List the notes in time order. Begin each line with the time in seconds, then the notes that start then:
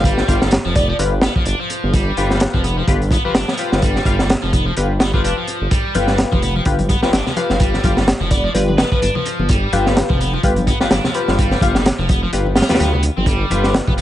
Already playing: G1 F4 G4 B4
0.04 G3, kick, closed hi-hat
0.18 snare
0.28 G1 F4 G4 F5, kick, closed hi-hat
0.42 snare
0.51 snare, closed hi-hat
0.65 F1 F3
0.75 B3 D5, kick, closed hi-hat
0.89 F3 D5
0.99 G1 F4 G4 B4, closed hi-hat
1.22 B3, snare, closed hi-hat
1.36 G1 F3, kick
1.46 G1 D4, closed hi-hat
1.59 F3
1.70 closed hi-hat
1.84 G1
1.93 G3, kick, closed hi-hat
2.17 G1 F4 G4 B4, closed hi-hat
2.30 snare
2.40 snare, closed hi-hat
2.54 F1 F3, kick
2.64 B3, closed hi-hat
2.78 F3
2.87 G1 F4 G4 B4, kick, closed hi-hat
3.02 closed hi-hat
3.11 B3, kick, closed hi-hat
3.25 G1 F3 F4 G4 B4
3.35 G1 D4, snare, closed hi-hat
3.48 F3, snare
3.57 F4 G4 B4, closed hi-hat
3.72 G1, snare
3.82 G3, kick, closed hi-hat
3.96 snare
4.05 G1 F4 G4 F5, kick, closed hi-hat
4.19 snare
4.30 snare, closed hi-hat
4.43 F1 F3
4.53 B3, kick, closed hi-hat
4.66 F3
4.77 G1 F4 G4 B4, closed hi-hat
5.00 B3, snare, closed hi-hat
5.14 F3 F4 G4 B4, kick
5.24 F1 D4 F4 G4 B4, closed hi-hat
5.37 F3
5.47 closed hi-hat
5.61 G1
5.71 G3, kick, closed hi-hat
5.95 G1 F4 G4 B4, closed hi-hat, muted conga, high conga
6.07 snare
6.18 snare, closed hi-hat, muted conga
6.31 F1 F3, kick, high conga, low conga
6.42 B3, closed hi-hat
6.55 F3, muted conga
6.65 G1 F4 G4 B4, kick, closed hi-hat
6.79 closed hi-hat, muted conga, high conga
6.89 B3, kick, closed hi-hat
7.03 G1 F3 F4 G4 B4, snare
7.13 G1 D4, snare, closed hi-hat, muted conga, high conga
7.26 F3, snare, low conga
7.37 F4 G4 B4 F5, closed hi-hat, muted conga
7.50 G1 F5, snare, high conga
7.60 G3, kick, closed hi-hat
7.74 snare, muted conga
7.84 G1 F4 G4 F5, kick, closed hi-hat, high conga
7.97 snare, muted conga
8.08 snare, closed hi-hat
8.20 F1 F3, high conga, low conga
8.31 B3 D5, kick, closed hi-hat, muted conga
8.44 F3 D5
8.54 G1 F4 G4 B4, closed hi-hat, muted conga
8.68 B4, high conga
8.78 B3 B4, snare, closed hi-hat
8.92 G1 F3 B4, kick, muted conga
9.02 G1 D4, closed hi-hat, high conga
9.15 F3, muted conga, low conga
9.25 closed hi-hat
9.39 G1, high conga
9.49 G3, kick, closed hi-hat, muted conga
9.73 G1 F4 G4 B4, closed hi-hat, muted conga, high conga
9.86 snare
9.97 snare, closed hi-hat
10.10 F1 F3, kick, muted conga, high conga, low conga
10.20 B3, closed hi-hat
10.33 F3, muted conga
10.43 G1 F4 G4 B4, kick, closed hi-hat
10.56 closed hi-hat, high conga
10.67 B3, kick, closed hi-hat, muted conga
10.80 G1 F3 F4 G4 B4, snare
10.91 G1 D4, snare, closed hi-hat, muted conga, high conga
11.04 F3, snare, low conga
11.14 F4 G4 B4, closed hi-hat
11.28 G1, snare, muted conga, high conga
11.39 G3, kick, closed hi-hat
11.51 snare, muted conga
11.61 G1 F4 G4 F5, kick, closed hi-hat, high conga
11.75 snare
11.86 snare, closed hi-hat, muted conga
11.99 F1 F3, high conga, low conga
12.09 B3, kick, closed hi-hat, muted conga
12.23 F3
12.33 G1 F4 G4 B4, closed hi-hat
12.46 muted conga, high conga
12.55 F4, snare, closed hi-hat
12.62 snare, closed hi-hat
12.69 D2 G3 F4 G4 B4, snare, closed hi-hat, muted conga
12.75 snare, closed hi-hat
12.80 D2 B3 F4 G4 B4, closed hi-hat, high conga
12.93 B3, low conga
13.03 closed hi-hat, muted conga
13.17 G1 C4, high conga
13.26 G3, kick, closed hi-hat
13.50 G1 F4 G4 B4, closed hi-hat, muted conga, high conga
13.64 snare
13.74 snare, closed hi-hat, muted conga
13.88 F1 B3, kick, high conga, low conga
13.98 B3, closed hi-hat